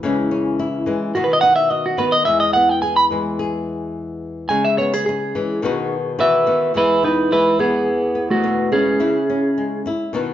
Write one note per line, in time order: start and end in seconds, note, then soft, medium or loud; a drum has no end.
0.03 0.87 C#3 medium
0.03 0.85 E3 medium
0.03 0.86 G#3 medium
0.03 0.30 C#4 medium
0.03 0.58 E4 medium
0.31 1.12 C#4 medium
0.59 1.15 E4 medium
0.86 1.11 E3 medium
0.86 1.12 G#3 medium
1.15 1.99 B2 medium
1.15 1.96 D#3 medium
1.15 1.98 B3 medium
1.15 1.24 F#4 medium
1.15 muted nylon-string guitar stroke medium
1.24 1.33 B4 medium
1.33 1.41 D#5 medium
1.41 2.24 D#4 medium
1.41 1.55 F#5 loud
1.56 1.70 E5 medium
1.70 2.23 F#4 medium
1.70 1.85 D#5 medium
1.86 1.98 F#4 medium
1.98 2.23 D#3 medium
1.98 2.23 B3 medium
1.98 2.13 B4 medium
2.12 2.25 D#5 medium
2.25 4.51 E2 medium
2.25 3.11 G#3 medium
2.25 2.40 E5 loud
2.40 2.53 D#5 medium
2.53 4.52 B3 medium
2.53 2.69 F#5 medium
2.69 2.81 G5 medium
2.82 3.38 G#4 medium
2.82 2.96 G#5 medium
2.96 3.05 B5 medium
3.11 4.48 E3 medium
3.11 4.48 G#3 medium
3.39 4.48 G#4 medium
4.49 5.35 C#3 medium
4.49 5.35 G#3 medium
4.49 4.64 G#5 loud
4.65 4.78 E5 medium
4.78 4.93 B3 medium
4.78 4.93 C#5 medium
4.93 5.63 C#4 soft
4.93 5.05 G#4 medium
5.06 6.58 G#4 medium
5.06 muted nylon-string guitar stroke medium
5.35 5.60 E3 medium
5.35 5.61 G#3 medium
5.62 6.47 B2 medium
5.62 6.45 D#3 medium
5.62 6.46 B3 medium
5.62 5.92 D#4 medium
5.62 6.17 F#4 medium
6.19 6.72 F#4 medium
6.19 6.72 B4 medium
6.19 6.72 E5 loud
6.47 6.72 D#3 medium
6.47 6.72 B3 medium
6.74 9.00 E2 medium
6.74 7.58 E3 medium
6.74 7.31 G#3 medium
6.74 7.02 B3 medium
6.74 7.03 E4 medium
6.74 8.99 G#4 medium
6.74 7.03 B4 loud
7.03 7.58 B3 medium
7.03 7.30 D#4 medium
7.03 7.31 B4 medium
7.32 7.88 G#3 medium
7.32 7.58 E4 medium
7.32 7.60 B4 medium
7.59 8.98 E3 medium
7.59 8.14 B3 medium
7.59 8.28 B3 medium
7.59 8.31 G#4 medium
8.15 8.43 B3 medium
8.30 8.70 A3 medium
8.30 8.72 F#4 medium
8.43 8.97 B2 medium
8.43 9.01 B3 medium
8.72 8.97 G#3 medium
8.72 9.82 C#4 medium
8.72 9.82 G#4 medium
9.00 9.85 C#3 medium
9.00 9.85 E4 medium
9.30 10.11 C#4 medium
9.58 10.11 G#3 medium
9.86 10.15 E4 medium
9.86 muted nylon-string guitar stroke medium
10.13 10.34 B2 medium
10.13 10.34 D#3 medium
10.13 10.34 B3 medium
10.13 10.34 D#4 medium
10.13 10.34 F#4 medium